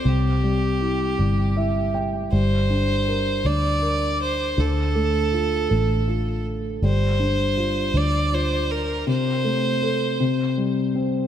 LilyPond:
<<
  \new Staff \with { instrumentName = "Violin" } { \time 6/8 \key g \dorian \tempo 4. = 53 g'2~ g'8 r8 | c''4. d''4 c''8 | a'2~ a'8 r8 | c''4. d''8 c''8 bes'8 |
c''2 r4 | }
  \new Staff \with { instrumentName = "Grand piano" } { \time 6/8 \key g \dorian << { r2 e''8 g''8 | r2. | r2. | r2. |
r2. | } \\ { c8 g8 e'8 g8 e'4 | g8 d'8 bes'8 d'8 bes'4 | d8 a8 f'8 a8 f'4 | g8 d'8 f'8 d'8 f'4 |
c8 a8 a'8 c8 g8 c'8 | } >> }
  \new Staff \with { instrumentName = "Fingered electric bass" } { \clef bass \time 6/8 \key g \dorian c,4. g,,4. | g,,4. d,4. | d,4. a,,4. | g,,4. d,4. |
r2. | }
>>